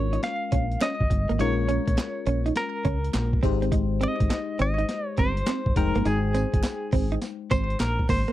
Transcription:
Already playing: fingered electric bass G#1, fm electric piano G#3 C#4 F4 A#4, clean electric guitar C#5
0.13 clean electric guitar D#4, closed hi-hat
0.23 clean electric guitar F5, snare, closed hi-hat
0.52 fingered electric bass A#1, clean electric guitar C#4, kick, closed hi-hat
0.72 closed hi-hat
0.81 clean electric guitar C#4 D#5, snare, clap, closed hi-hat
1.00 fingered electric bass G#1, kick
1.10 fingered electric bass G1, muted clean electric guitar stroke, kick, closed hi-hat
1.29 fingered electric bass G#1, clean electric guitar A#3, closed hi-hat
1.39 fingered electric bass A#1, fm electric piano G#3 C#4 F4 A#4, clean electric guitar D#4 C#5, closed hi-hat
1.69 clean electric guitar C#4, closed hi-hat
1.88 fingered electric bass A#1, muted clean electric guitar stroke, kick, closed hi-hat
1.97 muted clean electric guitar stroke, snare, clap, closed hi-hat
2.26 fingered electric bass A#1, clean electric guitar C#4, closed hi-hat
2.46 clean electric guitar D#4, closed hi-hat
2.56 clean electric guitar A#4, snare, closed hi-hat
2.85 fingered electric bass C#2, clean electric guitar C#4, kick, closed hi-hat
3.04 closed hi-hat
3.14 fingered electric bass A#1, muted clean electric guitar stroke, snare, clap, closed hi-hat
3.33 kick
3.43 fingered electric bass G#1, fm electric piano G#3 D#4 G4 C5, clean electric guitar C4, kick, closed hi-hat
3.62 clean electric guitar C4, closed hi-hat
3.72 clean electric guitar D#4, kick, closed hi-hat
4.01 clean electric guitar C4 D#5, closed hi-hat
4.20 fingered electric bass G#1, muted clean electric guitar stroke, kick, closed hi-hat
4.30 muted clean electric guitar stroke, snare, clap, closed hi-hat
4.59 fingered electric bass G#1, clean electric guitar C4 D#5, closed hi-hat
4.78 clean electric guitar D#4, closed hi-hat
4.89 snare, closed hi-hat
5.08 clean electric guitar C#5
5.17 fingered electric bass G1, clean electric guitar C4 C5, kick, closed hi-hat
5.37 closed hi-hat
5.47 clean electric guitar C4, snare, clap, closed hi-hat
5.66 fingered electric bass G#1, kick
5.76 fingered electric bass F1, fm electric piano G#3 D#4 C5 G5, clean electric guitar A#4, muted clean electric guitar stroke, kick, closed hi-hat
5.95 fingered electric bass G1, clean electric guitar A#3, closed hi-hat
6.05 fingered electric bass G#1, clean electric guitar D#4 G#4, closed hi-hat, tambourine
6.34 clean electric guitar C4, closed hi-hat, tambourine
6.54 fingered electric bass G1, muted clean electric guitar stroke, kick, closed hi-hat
6.63 muted clean electric guitar stroke, snare, clap, closed hi-hat, tambourine
6.92 fingered electric bass G#1, clean electric guitar C4, kick, open hi-hat
7.12 clean electric guitar D#4, closed hi-hat
7.22 snare, closed hi-hat, tambourine
7.51 fingered electric bass G#1, clean electric guitar C4 C5, kick, closed hi-hat, tambourine
7.70 closed hi-hat
7.80 fingered electric bass A#1, clean electric guitar A#4, muted clean electric guitar stroke, snare, clap, closed hi-hat, tambourine
7.99 kick
8.09 fingered electric bass G#1, clean electric guitar A#3 C5, kick, open hi-hat, tambourine
8.28 clean electric guitar A#3, closed hi-hat

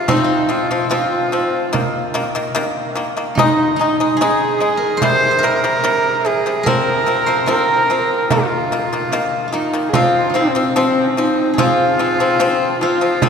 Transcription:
Already playing: horsehead fiddle F4, guzheng F4 G#4
0.08 pipa F3 C4, horsehead fiddle D#4, guzheng D#4, frame drum
0.17 guzheng F4
0.24 guzheng D#4
0.49 pipa F3 C4, horsehead fiddle F4
0.71 pipa F3 C4, frame drum
0.90 pipa F3 C4, guzheng F4, horsehead fiddle F4, frame drum
1.32 pipa F3 C4, frame drum
1.73 pipa D#3 A#3, frame drum
2.14 pipa D#3 A#3, frame drum
2.35 pipa D#3 A#3, frame drum
2.55 pipa D#3 A#3, frame drum
2.95 pipa D#3 A#3
3.17 pipa D#3 A#3
3.35 pipa G#3 D#4, guzheng D#4, horsehead fiddle D#4, frame drum
3.76 pipa G#3, guzheng D#4
3.81 pipa D#4, horsehead fiddle D#4
3.99 pipa G#3 D#4, frame drum
4.17 guzheng G#4
4.21 pipa G#3 D#4, horsehead fiddle G#4, frame drum
4.60 pipa G#3 D#4, frame drum
4.77 guzheng A#4
4.97 guzheng C5
5.02 pipa C3 G3, horsehead fiddle C5, frame drum
5.31 guzheng C5
5.39 guzheng A#4
5.43 pipa C3 G3, horsehead fiddle A#4
5.64 pipa C3 G3, frame drum
5.84 pipa C3 G3, frame drum
6.25 pipa C3 G3, horsehead fiddle G#4
6.46 pipa C3 G3
6.63 pipa F3 C4, guzheng A#4, horsehead fiddle A#4, frame drum
7.06 pipa F3 C4
7.26 pipa F3 C4, guzheng C5, frame drum
7.46 pipa F3 C4, guzheng A#4, horsehead fiddle A#4, frame drum
7.89 pipa F3 C4, frame drum
8.30 pipa D#3 A#3, horsehead fiddle F4, guzheng F4, frame drum
8.71 pipa D#3 A#3, frame drum
8.93 pipa D#3 A#3, frame drum
9.12 pipa D#3 A#3, frame drum
9.48 guzheng F4
9.53 pipa D#3 A#3, guzheng D#4, horsehead fiddle D#4
9.73 pipa D#3 A#3
9.88 horsehead fiddle G#4
9.93 pipa F3 C4, horsehead fiddle F4, guzheng F4, frame drum
10.30 guzheng D#4
10.34 pipa F3 C4, guzheng C4, horsehead fiddle C4
10.55 pipa F3 C4, frame drum
10.76 pipa F3 C4, horsehead fiddle C4, guzheng C4, frame drum
11.17 pipa F3 C4, horsehead fiddle D#4, frame drum
11.53 guzheng G#4
11.58 pipa F3 C4, guzheng F4, horsehead fiddle F4, frame drum
11.99 pipa F3 C4
12.18 pipa F3 C4, frame drum
12.40 pipa F3 C4, frame drum
12.80 pipa F3 C4, horsehead fiddle F4, guzheng F4
13.01 pipa F3 C4
13.22 pipa F3 C4, frame drum

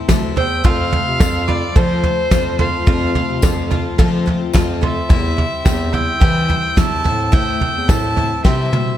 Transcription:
0.08 bass clarinet D2, twelve-string acoustic guitar E3 A3 C4 E4, five-string banjo A4, kick, snare, floor tom, tambourine
0.36 bass clarinet E2, twelve-string acoustic guitar A3 C4 E4, five-string banjo C5, fiddle G5, glockenspiel E6, floor tom
0.64 twelve-string acoustic guitar F2 C3 F3 A3 C4 F4, bass clarinet F2, five-string banjo F4, fiddle F5, glockenspiel C6, kick, floor tom
0.92 twelve-string acoustic guitar F3 A3 C4 F4, floor tom
1.07 bass clarinet C3
1.19 bass clarinet F2, twelve-string acoustic guitar F3 A3 C4 F4, five-string banjo A4, kick, snare, floor tom, tambourine
1.48 twelve-string acoustic guitar F3 A3 C4 F4, five-string banjo F4, fiddle D5, glockenspiel B5, floor tom
1.75 twelve-string acoustic guitar F2 C3 F3 A3 C4 F4, bass clarinet F3, five-string banjo A4, fiddle C5, glockenspiel A5, kick, floor tom
2.03 twelve-string acoustic guitar F3 A3 C4 F4, floor tom
2.30 bass clarinet F2, twelve-string acoustic guitar F3 A3 C4 F4, five-string banjo F4, kick, snare, floor tom, tambourine
2.59 twelve-string acoustic guitar F3 A3 C4 F4, five-string banjo A4, fiddle F5, glockenspiel C6, floor tom
2.87 twelve-string acoustic guitar F2 C3 F3 A3 C4 F4, bass clarinet F2, five-string banjo F4, kick, floor tom
3.15 twelve-string acoustic guitar F3 A3 C4 F4, floor tom
3.29 bass clarinet C3
3.42 bass clarinet F2, twelve-string acoustic guitar F3 A3 C4 F4, five-string banjo A4, kick, snare, floor tom, tambourine
3.71 twelve-string acoustic guitar F3 A3 C4 F4, five-string banjo F4, floor tom
3.98 twelve-string acoustic guitar F2 C3 F3 A3 C4 F4, bass clarinet F3, five-string banjo A4, kick, floor tom
4.26 twelve-string acoustic guitar F3 A3 C4 F4, floor tom
4.53 bass clarinet F2, twelve-string acoustic guitar F3 A3 C4 F4, five-string banjo F4, kick, snare, floor tom, tambourine
4.81 twelve-string acoustic guitar F3 A3 C4 F4, five-string banjo A4, fiddle E5, glockenspiel C6, floor tom
5.09 bass clarinet E2, twelve-string acoustic guitar E3 G3 C4 E4, five-string banjo E4, kick, floor tom
5.37 twelve-string acoustic guitar G3 C4 E4, floor tom
5.65 bass clarinet E2, twelve-string acoustic guitar E3 G3 C4 E4, five-string banjo G4, kick, snare, floor tom, tambourine
5.93 twelve-string acoustic guitar G3 C4 E4, five-string banjo E4, fiddle G5, glockenspiel E6, floor tom
6.20 twelve-string acoustic guitar E3 G3 C4 E4, bass clarinet E3, five-string banjo G4, kick, floor tom
6.48 twelve-string acoustic guitar G3 C4 E4, floor tom
6.76 bass clarinet E2, twelve-string acoustic guitar E3 G3 C4 E4, five-string banjo E4, fiddle A5, glockenspiel E6, kick, snare, floor tom, tambourine
7.04 bass clarinet A2, twelve-string acoustic guitar A3 C4 E4, five-string banjo A4, floor tom
7.32 twelve-string acoustic guitar A2 E3 A3 C4 E4, five-string banjo E4, fiddle G5, glockenspiel E6, kick, floor tom
7.60 twelve-string acoustic guitar A3 C4 E4, floor tom
7.75 bass clarinet E2
7.88 bass clarinet A2, twelve-string acoustic guitar E3 A3 C4 E4, five-string banjo A4, fiddle A5, kick, snare, floor tom, tambourine
8.16 twelve-string acoustic guitar A3 C4 E4, five-string banjo E4, floor tom
8.44 twelve-string acoustic guitar C3 E3 G3 C4 E4, bass clarinet C3, five-string banjo G4, fiddle E5, glockenspiel C6, kick, snare
8.72 bass clarinet B2, twelve-string acoustic guitar G3 C4 E4, high tom

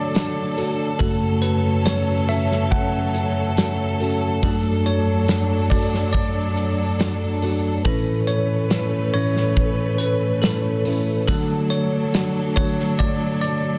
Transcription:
Already playing: string section F#3 D4 A4, nylon-string guitar D4 F#4 A4, tine electric piano C#5 D5
0.14 nylon-string guitar A3 D4 F#4 A4, snare, hi-hat pedal, open hi-hat, tambourine
0.57 nylon-string guitar D4 F#4 A4, hi-hat pedal, open hi-hat
0.99 tine electric piano F#2 C#3 A3 A4, string section F#3 C#4, nylon-string guitar F#3 C#4 F#4 A4, kick, hi-hat pedal, open hi-hat
1.42 tine electric piano B4, hi-hat pedal, open hi-hat
1.85 nylon-string guitar F#3 C#4 F#4 A4, tine electric piano C#5, snare, hi-hat pedal, open hi-hat, tambourine
2.28 nylon-string guitar C#4 F#4 A4, tine electric piano E5, hi-hat pedal, open hi-hat
2.51 snare
2.71 tine electric piano F#5, kick, hi-hat pedal, open hi-hat
3.14 hi-hat pedal, open hi-hat
3.57 nylon-string guitar F#3 C#4 F#4 A4, snare, hi-hat pedal, open hi-hat, tambourine
4.00 nylon-string guitar C#4 F#4 A4, hi-hat pedal, open hi-hat
4.43 tine electric piano F#2 F#3 A3 A4, nylon-string guitar F#3 D4 F#4 A4, string section F#3 D4, kick, hi-hat pedal, open hi-hat
4.86 tine electric piano C#5, hi-hat pedal, open hi-hat
5.28 nylon-string guitar F#3 D4 F#4 A4, snare, hi-hat pedal, open hi-hat, tambourine
5.70 nylon-string guitar D4 F#4 A4, tine electric piano D5, kick, hi-hat pedal, open hi-hat
5.94 snare
6.13 tine electric piano D5, kick, hi-hat pedal, open hi-hat
6.57 hi-hat pedal, open hi-hat
7.00 nylon-string guitar F#3 D4 F#4 A4, snare, hi-hat pedal, open hi-hat, tambourine
7.42 nylon-string guitar D4 F#4 A4, hi-hat pedal, open hi-hat
7.85 tine electric piano A2 E3 C#4 A4, nylon-string guitar A3 C#4 E4 B4, string section A3 C#4 B4, kick, hi-hat pedal, open hi-hat
8.27 tine electric piano C#5, hi-hat pedal, open hi-hat
8.70 nylon-string guitar A3 C#4 E4 B4, snare, hi-hat pedal, open hi-hat, tambourine
9.14 tine electric piano A2 E3 C#4 C#5, nylon-string guitar C#4 E4 B4, hi-hat pedal, open hi-hat
9.36 snare
9.56 kick, hi-hat pedal, open hi-hat
9.98 tine electric piano B4, hi-hat pedal, open hi-hat
10.42 nylon-string guitar A3 C#4 E4 B4, tine electric piano A4, snare, hi-hat pedal, open hi-hat, tambourine
10.85 nylon-string guitar C#4 E4 B4, hi-hat pedal, open hi-hat
11.27 tine electric piano D3 F#3 A3 A4, nylon-string guitar D3 F#3 A3 D4 F#4, string section F#3 D4 A4, kick, hi-hat pedal, open hi-hat
11.70 tine electric piano C#5, hi-hat pedal, open hi-hat
12.14 nylon-string guitar F#3 A3 D4 F#4, snare, hi-hat pedal, open hi-hat, tambourine
12.56 tine electric piano D3 F#3 A3 C#5, nylon-string guitar A3 D4 F#4, kick, hi-hat pedal, open hi-hat
12.80 snare
12.99 tine electric piano D5, kick, hi-hat pedal, open hi-hat
13.41 tine electric piano D5, hi-hat pedal, open hi-hat

